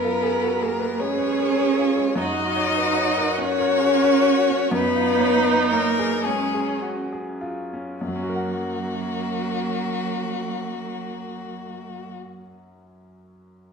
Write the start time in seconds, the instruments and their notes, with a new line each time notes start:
Already playing: grand piano F#2, cello B3, viola A#4, violin B4
0.04 grand piano F4
0.23 grand piano G#4
0.43 grand piano F#4
0.61 cello A#3, grand piano G#4, violin A#4
0.79 grand piano B4
1.00 grand piano G#3, cello C#4, viola G#4, violin C#5
1.18 grand piano B4
1.39 grand piano A#4
1.57 grand piano B4
1.79 grand piano F4
1.97 grand piano G#3
2.16 grand piano F#2, cello D#4, viola F#4, violin D#5
2.36 grand piano F#4
2.56 grand piano C#5
2.77 grand piano B4
2.97 grand piano C#5
3.18 grand piano A#4
3.38 grand piano C#4, cello C#4, violin C#5
3.60 grand piano A#4
3.80 grand piano G#4
4.02 grand piano A#4
4.25 grand piano F#4
4.49 grand piano C#4
4.71 grand piano F#2, cello B3, viola D#4, violin B4
4.95 grand piano F4
5.20 grand piano C#5
5.47 grand piano B4
5.70 cello A#3, violin A#4, grand piano C#5
5.99 grand piano G#4
6.25 cello G#3, viola C#4, grand piano C#4, violin G#4
6.54 grand piano G#4
6.81 grand piano F#4
7.12 grand piano G#4
7.41 grand piano F4
7.73 grand piano C#4
8.00 grand piano F#2, cello F#3, viola A#3, violin F#4
8.08 grand piano F#3
8.15 grand piano C#4
8.23 grand piano F#4
8.30 grand piano A#4
8.36 grand piano F#5